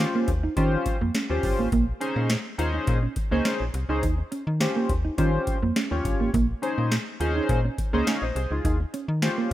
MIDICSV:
0, 0, Header, 1, 6, 480
1, 0, Start_track
1, 0, Tempo, 576923
1, 1434, Time_signature, 4, 2, 24, 8
1, 7930, End_track
2, 0, Start_track
2, 0, Title_t, "Analog polysynth"
2, 0, Program_c, 0, 90
2, 0, Note_on_c, 0, 61, 83
2, 0, Note_on_c, 0, 65, 75
2, 0, Note_on_c, 0, 67, 77
2, 0, Note_on_c, 0, 72, 88
2, 252, Note_off_c, 0, 61, 0
2, 253, Note_off_c, 0, 65, 0
2, 254, Note_off_c, 0, 67, 0
2, 255, Note_off_c, 0, 72, 0
2, 470, Note_on_c, 0, 61, 90
2, 471, Note_on_c, 0, 65, 85
2, 475, Note_on_c, 0, 67, 80
2, 475, Note_on_c, 0, 72, 102
2, 800, Note_off_c, 0, 61, 0
2, 800, Note_off_c, 0, 65, 0
2, 802, Note_off_c, 0, 67, 0
2, 802, Note_off_c, 0, 72, 0
2, 1077, Note_on_c, 0, 61, 76
2, 1079, Note_on_c, 0, 65, 75
2, 1082, Note_on_c, 0, 67, 71
2, 1085, Note_on_c, 0, 72, 91
2, 1397, Note_off_c, 0, 61, 0
2, 1398, Note_off_c, 0, 65, 0
2, 1400, Note_off_c, 0, 67, 0
2, 1401, Note_off_c, 0, 72, 0
2, 1667, Note_on_c, 0, 61, 90
2, 1670, Note_on_c, 0, 63, 80
2, 1672, Note_on_c, 0, 68, 83
2, 1674, Note_on_c, 0, 72, 97
2, 1930, Note_off_c, 0, 61, 0
2, 1931, Note_off_c, 0, 63, 0
2, 1933, Note_off_c, 0, 68, 0
2, 1933, Note_off_c, 0, 72, 0
2, 2148, Note_on_c, 0, 61, 94
2, 2150, Note_on_c, 0, 63, 93
2, 2152, Note_on_c, 0, 68, 87
2, 2155, Note_on_c, 0, 72, 101
2, 2479, Note_off_c, 0, 61, 0
2, 2480, Note_off_c, 0, 63, 0
2, 2481, Note_off_c, 0, 68, 0
2, 2482, Note_off_c, 0, 72, 0
2, 2756, Note_on_c, 0, 61, 96
2, 2757, Note_on_c, 0, 63, 94
2, 2759, Note_on_c, 0, 68, 86
2, 2761, Note_on_c, 0, 72, 112
2, 3016, Note_off_c, 0, 61, 0
2, 3016, Note_off_c, 0, 63, 0
2, 3017, Note_off_c, 0, 68, 0
2, 3018, Note_off_c, 0, 72, 0
2, 3237, Note_on_c, 0, 61, 93
2, 3239, Note_on_c, 0, 63, 92
2, 3242, Note_on_c, 0, 68, 91
2, 3243, Note_on_c, 0, 72, 103
2, 3352, Note_off_c, 0, 61, 0
2, 3353, Note_off_c, 0, 63, 0
2, 3354, Note_off_c, 0, 68, 0
2, 3355, Note_off_c, 0, 72, 0
2, 3828, Note_on_c, 0, 61, 82
2, 3831, Note_on_c, 0, 65, 69
2, 3833, Note_on_c, 0, 67, 76
2, 3835, Note_on_c, 0, 72, 90
2, 4090, Note_off_c, 0, 61, 0
2, 4092, Note_off_c, 0, 65, 0
2, 4093, Note_off_c, 0, 67, 0
2, 4094, Note_off_c, 0, 72, 0
2, 4307, Note_on_c, 0, 61, 87
2, 4310, Note_on_c, 0, 65, 84
2, 4311, Note_on_c, 0, 67, 85
2, 4313, Note_on_c, 0, 72, 100
2, 4638, Note_off_c, 0, 61, 0
2, 4640, Note_off_c, 0, 65, 0
2, 4640, Note_off_c, 0, 67, 0
2, 4641, Note_off_c, 0, 72, 0
2, 4916, Note_on_c, 0, 61, 81
2, 4919, Note_on_c, 0, 65, 72
2, 4921, Note_on_c, 0, 67, 75
2, 4922, Note_on_c, 0, 73, 85
2, 5236, Note_off_c, 0, 61, 0
2, 5238, Note_off_c, 0, 65, 0
2, 5239, Note_off_c, 0, 67, 0
2, 5240, Note_off_c, 0, 73, 0
2, 5508, Note_on_c, 0, 61, 85
2, 5510, Note_on_c, 0, 63, 77
2, 5512, Note_on_c, 0, 68, 80
2, 5514, Note_on_c, 0, 72, 97
2, 5770, Note_off_c, 0, 61, 0
2, 5771, Note_off_c, 0, 63, 0
2, 5772, Note_off_c, 0, 68, 0
2, 5773, Note_off_c, 0, 72, 0
2, 5989, Note_on_c, 0, 61, 94
2, 5993, Note_on_c, 0, 63, 84
2, 5994, Note_on_c, 0, 68, 87
2, 5997, Note_on_c, 0, 72, 108
2, 6320, Note_off_c, 0, 61, 0
2, 6321, Note_off_c, 0, 63, 0
2, 6322, Note_off_c, 0, 68, 0
2, 6323, Note_off_c, 0, 72, 0
2, 6598, Note_on_c, 0, 61, 101
2, 6600, Note_on_c, 0, 63, 92
2, 6602, Note_on_c, 0, 68, 84
2, 6604, Note_on_c, 0, 72, 103
2, 6713, Note_on_c, 0, 77, 65
2, 6714, Note_off_c, 0, 68, 0
2, 6715, Note_off_c, 0, 72, 0
2, 6717, Note_on_c, 0, 73, 57
2, 6834, Note_off_c, 0, 77, 0
2, 6837, Note_off_c, 0, 73, 0
2, 6839, Note_on_c, 0, 75, 67
2, 6844, Note_on_c, 0, 72, 59
2, 6857, Note_off_c, 0, 61, 0
2, 6858, Note_off_c, 0, 63, 0
2, 6943, Note_off_c, 0, 72, 0
2, 6947, Note_off_c, 0, 75, 0
2, 6953, Note_on_c, 0, 72, 73
2, 6959, Note_on_c, 0, 68, 58
2, 7072, Note_off_c, 0, 68, 0
2, 7074, Note_off_c, 0, 72, 0
2, 7081, Note_on_c, 0, 68, 64
2, 7087, Note_on_c, 0, 65, 60
2, 7309, Note_off_c, 0, 68, 0
2, 7312, Note_off_c, 0, 65, 0
2, 7671, Note_on_c, 0, 61, 81
2, 7673, Note_on_c, 0, 65, 76
2, 7675, Note_on_c, 0, 67, 74
2, 7678, Note_on_c, 0, 72, 85
2, 7930, Note_off_c, 0, 61, 0
2, 7930, Note_off_c, 0, 65, 0
2, 7930, Note_off_c, 0, 67, 0
2, 7930, Note_off_c, 0, 72, 0
2, 7930, End_track
3, 0, Start_track
3, 0, Title_t, "Clean electric guitar"
3, 0, Program_c, 1, 27
3, 123, Note_on_c, 1, 58, 84
3, 208, Note_off_c, 1, 58, 0
3, 361, Note_on_c, 1, 63, 76
3, 447, Note_off_c, 1, 63, 0
3, 476, Note_on_c, 1, 61, 77
3, 572, Note_off_c, 1, 61, 0
3, 842, Note_on_c, 1, 58, 72
3, 928, Note_off_c, 1, 58, 0
3, 954, Note_on_c, 1, 61, 78
3, 1051, Note_off_c, 1, 61, 0
3, 1322, Note_on_c, 1, 58, 63
3, 1407, Note_off_c, 1, 58, 0
3, 1435, Note_on_c, 1, 58, 96
3, 1531, Note_off_c, 1, 58, 0
3, 1801, Note_on_c, 1, 61, 69
3, 1887, Note_off_c, 1, 61, 0
3, 2154, Note_on_c, 1, 65, 84
3, 2250, Note_off_c, 1, 65, 0
3, 2280, Note_on_c, 1, 63, 76
3, 2366, Note_off_c, 1, 63, 0
3, 2519, Note_on_c, 1, 61, 69
3, 2606, Note_off_c, 1, 61, 0
3, 2759, Note_on_c, 1, 58, 76
3, 2845, Note_off_c, 1, 58, 0
3, 2872, Note_on_c, 1, 61, 96
3, 2970, Note_off_c, 1, 61, 0
3, 3238, Note_on_c, 1, 63, 70
3, 3325, Note_off_c, 1, 63, 0
3, 3350, Note_on_c, 1, 63, 81
3, 3448, Note_off_c, 1, 63, 0
3, 3591, Note_on_c, 1, 61, 77
3, 3689, Note_off_c, 1, 61, 0
3, 3959, Note_on_c, 1, 58, 78
3, 4046, Note_off_c, 1, 58, 0
3, 4198, Note_on_c, 1, 63, 75
3, 4285, Note_off_c, 1, 63, 0
3, 4312, Note_on_c, 1, 61, 81
3, 4409, Note_off_c, 1, 61, 0
3, 4679, Note_on_c, 1, 58, 75
3, 4765, Note_off_c, 1, 58, 0
3, 4793, Note_on_c, 1, 61, 83
3, 4890, Note_off_c, 1, 61, 0
3, 5160, Note_on_c, 1, 58, 64
3, 5246, Note_off_c, 1, 58, 0
3, 5272, Note_on_c, 1, 58, 86
3, 5370, Note_off_c, 1, 58, 0
3, 5640, Note_on_c, 1, 61, 73
3, 5726, Note_off_c, 1, 61, 0
3, 5994, Note_on_c, 1, 65, 81
3, 6091, Note_off_c, 1, 65, 0
3, 6122, Note_on_c, 1, 63, 79
3, 6207, Note_off_c, 1, 63, 0
3, 6362, Note_on_c, 1, 61, 77
3, 6448, Note_off_c, 1, 61, 0
3, 6601, Note_on_c, 1, 58, 79
3, 6686, Note_off_c, 1, 58, 0
3, 6714, Note_on_c, 1, 61, 89
3, 6810, Note_off_c, 1, 61, 0
3, 7082, Note_on_c, 1, 63, 67
3, 7168, Note_off_c, 1, 63, 0
3, 7196, Note_on_c, 1, 63, 87
3, 7292, Note_off_c, 1, 63, 0
3, 7435, Note_on_c, 1, 61, 74
3, 7531, Note_off_c, 1, 61, 0
3, 7800, Note_on_c, 1, 58, 77
3, 7886, Note_off_c, 1, 58, 0
3, 7930, End_track
4, 0, Start_track
4, 0, Title_t, "FM bass"
4, 0, Program_c, 2, 39
4, 233, Note_on_c, 2, 39, 90
4, 402, Note_off_c, 2, 39, 0
4, 472, Note_on_c, 2, 51, 98
4, 642, Note_off_c, 2, 51, 0
4, 843, Note_on_c, 2, 41, 84
4, 922, Note_off_c, 2, 41, 0
4, 1082, Note_on_c, 2, 39, 76
4, 1161, Note_off_c, 2, 39, 0
4, 1193, Note_on_c, 2, 31, 96
4, 1283, Note_off_c, 2, 31, 0
4, 1320, Note_on_c, 2, 32, 83
4, 1400, Note_off_c, 2, 32, 0
4, 1433, Note_on_c, 2, 34, 108
4, 1602, Note_off_c, 2, 34, 0
4, 1797, Note_on_c, 2, 46, 93
4, 1967, Note_off_c, 2, 46, 0
4, 2152, Note_on_c, 2, 39, 90
4, 2321, Note_off_c, 2, 39, 0
4, 2393, Note_on_c, 2, 46, 103
4, 2562, Note_off_c, 2, 46, 0
4, 2758, Note_on_c, 2, 37, 92
4, 2838, Note_off_c, 2, 37, 0
4, 2999, Note_on_c, 2, 34, 87
4, 3079, Note_off_c, 2, 34, 0
4, 3111, Note_on_c, 2, 36, 103
4, 3201, Note_off_c, 2, 36, 0
4, 3236, Note_on_c, 2, 37, 90
4, 3351, Note_on_c, 2, 39, 119
4, 3363, Note_off_c, 2, 37, 0
4, 3520, Note_off_c, 2, 39, 0
4, 3719, Note_on_c, 2, 51, 92
4, 3888, Note_off_c, 2, 51, 0
4, 4073, Note_on_c, 2, 39, 83
4, 4242, Note_off_c, 2, 39, 0
4, 4311, Note_on_c, 2, 51, 101
4, 4480, Note_off_c, 2, 51, 0
4, 4680, Note_on_c, 2, 41, 83
4, 4760, Note_off_c, 2, 41, 0
4, 4921, Note_on_c, 2, 39, 77
4, 5000, Note_off_c, 2, 39, 0
4, 5033, Note_on_c, 2, 31, 91
4, 5123, Note_off_c, 2, 31, 0
4, 5158, Note_on_c, 2, 32, 84
4, 5238, Note_off_c, 2, 32, 0
4, 5274, Note_on_c, 2, 34, 115
4, 5443, Note_off_c, 2, 34, 0
4, 5640, Note_on_c, 2, 46, 94
4, 5809, Note_off_c, 2, 46, 0
4, 5993, Note_on_c, 2, 39, 93
4, 6162, Note_off_c, 2, 39, 0
4, 6234, Note_on_c, 2, 46, 103
4, 6403, Note_off_c, 2, 46, 0
4, 6600, Note_on_c, 2, 37, 92
4, 6679, Note_off_c, 2, 37, 0
4, 6839, Note_on_c, 2, 34, 79
4, 6919, Note_off_c, 2, 34, 0
4, 6952, Note_on_c, 2, 36, 107
4, 7042, Note_off_c, 2, 36, 0
4, 7078, Note_on_c, 2, 37, 86
4, 7159, Note_off_c, 2, 37, 0
4, 7194, Note_on_c, 2, 39, 105
4, 7363, Note_off_c, 2, 39, 0
4, 7558, Note_on_c, 2, 51, 96
4, 7728, Note_off_c, 2, 51, 0
4, 7930, End_track
5, 0, Start_track
5, 0, Title_t, "Muted clean electric guitar strokes"
5, 233, Note_on_c, 9, 29, 48
5, 317, Note_off_c, 9, 29, 0
5, 715, Note_on_c, 9, 29, 46
5, 798, Note_off_c, 9, 29, 0
5, 1083, Note_on_c, 9, 29, 46
5, 1166, Note_off_c, 9, 29, 0
5, 1674, Note_on_c, 9, 29, 46
5, 1757, Note_off_c, 9, 29, 0
5, 1912, Note_on_c, 9, 29, 44
5, 1996, Note_off_c, 9, 29, 0
5, 2633, Note_on_c, 9, 29, 44
5, 2716, Note_off_c, 9, 29, 0
5, 3112, Note_on_c, 9, 29, 46
5, 3195, Note_off_c, 9, 29, 0
5, 3479, Note_on_c, 9, 29, 49
5, 3562, Note_off_c, 9, 29, 0
5, 4071, Note_on_c, 9, 29, 47
5, 4154, Note_off_c, 9, 29, 0
5, 4553, Note_on_c, 9, 29, 48
5, 4636, Note_off_c, 9, 29, 0
5, 4919, Note_on_c, 9, 29, 43
5, 5002, Note_off_c, 9, 29, 0
5, 5512, Note_on_c, 9, 29, 47
5, 5596, Note_off_c, 9, 29, 0
5, 5756, Note_on_c, 9, 29, 46
5, 5839, Note_off_c, 9, 29, 0
5, 6476, Note_on_c, 9, 29, 43
5, 6559, Note_off_c, 9, 29, 0
5, 6956, Note_on_c, 9, 29, 44
5, 7039, Note_off_c, 9, 29, 0
5, 7323, Note_on_c, 9, 29, 47
5, 7406, Note_off_c, 9, 29, 0
5, 7930, End_track
6, 0, Start_track
6, 0, Title_t, "Drums"
6, 231, Note_on_c, 9, 42, 68
6, 234, Note_on_c, 9, 36, 89
6, 315, Note_off_c, 9, 42, 0
6, 317, Note_off_c, 9, 36, 0
6, 472, Note_on_c, 9, 42, 76
6, 473, Note_on_c, 9, 36, 110
6, 555, Note_off_c, 9, 42, 0
6, 557, Note_off_c, 9, 36, 0
6, 713, Note_on_c, 9, 42, 74
6, 714, Note_on_c, 9, 36, 92
6, 797, Note_off_c, 9, 42, 0
6, 798, Note_off_c, 9, 36, 0
6, 953, Note_on_c, 9, 42, 86
6, 954, Note_on_c, 9, 38, 98
6, 1036, Note_off_c, 9, 42, 0
6, 1037, Note_off_c, 9, 38, 0
6, 1192, Note_on_c, 9, 46, 70
6, 1193, Note_on_c, 9, 36, 94
6, 1275, Note_off_c, 9, 46, 0
6, 1276, Note_off_c, 9, 36, 0
6, 1433, Note_on_c, 9, 42, 74
6, 1434, Note_on_c, 9, 36, 107
6, 1516, Note_off_c, 9, 42, 0
6, 1517, Note_off_c, 9, 36, 0
6, 1675, Note_on_c, 9, 42, 72
6, 1758, Note_off_c, 9, 42, 0
6, 1911, Note_on_c, 9, 38, 124
6, 1913, Note_on_c, 9, 42, 91
6, 1994, Note_off_c, 9, 38, 0
6, 1996, Note_off_c, 9, 42, 0
6, 2154, Note_on_c, 9, 42, 67
6, 2237, Note_off_c, 9, 42, 0
6, 2390, Note_on_c, 9, 42, 80
6, 2392, Note_on_c, 9, 36, 111
6, 2474, Note_off_c, 9, 42, 0
6, 2476, Note_off_c, 9, 36, 0
6, 2630, Note_on_c, 9, 42, 73
6, 2633, Note_on_c, 9, 36, 91
6, 2713, Note_off_c, 9, 42, 0
6, 2716, Note_off_c, 9, 36, 0
6, 2871, Note_on_c, 9, 42, 83
6, 2872, Note_on_c, 9, 38, 98
6, 2954, Note_off_c, 9, 42, 0
6, 2955, Note_off_c, 9, 38, 0
6, 3112, Note_on_c, 9, 42, 70
6, 3195, Note_off_c, 9, 42, 0
6, 3352, Note_on_c, 9, 36, 108
6, 3353, Note_on_c, 9, 42, 72
6, 3435, Note_off_c, 9, 36, 0
6, 3436, Note_off_c, 9, 42, 0
6, 3594, Note_on_c, 9, 42, 70
6, 3677, Note_off_c, 9, 42, 0
6, 3831, Note_on_c, 9, 38, 110
6, 3833, Note_on_c, 9, 42, 90
6, 3914, Note_off_c, 9, 38, 0
6, 3916, Note_off_c, 9, 42, 0
6, 4072, Note_on_c, 9, 36, 93
6, 4072, Note_on_c, 9, 42, 69
6, 4155, Note_off_c, 9, 42, 0
6, 4156, Note_off_c, 9, 36, 0
6, 4311, Note_on_c, 9, 42, 77
6, 4312, Note_on_c, 9, 36, 107
6, 4394, Note_off_c, 9, 42, 0
6, 4395, Note_off_c, 9, 36, 0
6, 4552, Note_on_c, 9, 42, 71
6, 4553, Note_on_c, 9, 36, 89
6, 4635, Note_off_c, 9, 42, 0
6, 4636, Note_off_c, 9, 36, 0
6, 4794, Note_on_c, 9, 38, 103
6, 4794, Note_on_c, 9, 42, 81
6, 4877, Note_off_c, 9, 42, 0
6, 4878, Note_off_c, 9, 38, 0
6, 5033, Note_on_c, 9, 36, 94
6, 5035, Note_on_c, 9, 42, 77
6, 5116, Note_off_c, 9, 36, 0
6, 5118, Note_off_c, 9, 42, 0
6, 5274, Note_on_c, 9, 36, 114
6, 5276, Note_on_c, 9, 42, 74
6, 5357, Note_off_c, 9, 36, 0
6, 5359, Note_off_c, 9, 42, 0
6, 5516, Note_on_c, 9, 42, 67
6, 5599, Note_off_c, 9, 42, 0
6, 5753, Note_on_c, 9, 38, 120
6, 5755, Note_on_c, 9, 42, 87
6, 5837, Note_off_c, 9, 38, 0
6, 5839, Note_off_c, 9, 42, 0
6, 5995, Note_on_c, 9, 42, 70
6, 6078, Note_off_c, 9, 42, 0
6, 6234, Note_on_c, 9, 36, 109
6, 6234, Note_on_c, 9, 42, 76
6, 6317, Note_off_c, 9, 36, 0
6, 6317, Note_off_c, 9, 42, 0
6, 6475, Note_on_c, 9, 36, 92
6, 6476, Note_on_c, 9, 42, 68
6, 6558, Note_off_c, 9, 36, 0
6, 6560, Note_off_c, 9, 42, 0
6, 6715, Note_on_c, 9, 42, 79
6, 6716, Note_on_c, 9, 38, 110
6, 6798, Note_off_c, 9, 42, 0
6, 6799, Note_off_c, 9, 38, 0
6, 6957, Note_on_c, 9, 42, 73
6, 7040, Note_off_c, 9, 42, 0
6, 7194, Note_on_c, 9, 36, 110
6, 7196, Note_on_c, 9, 42, 75
6, 7278, Note_off_c, 9, 36, 0
6, 7279, Note_off_c, 9, 42, 0
6, 7437, Note_on_c, 9, 42, 72
6, 7520, Note_off_c, 9, 42, 0
6, 7674, Note_on_c, 9, 38, 111
6, 7676, Note_on_c, 9, 42, 85
6, 7757, Note_off_c, 9, 38, 0
6, 7759, Note_off_c, 9, 42, 0
6, 7930, End_track
0, 0, End_of_file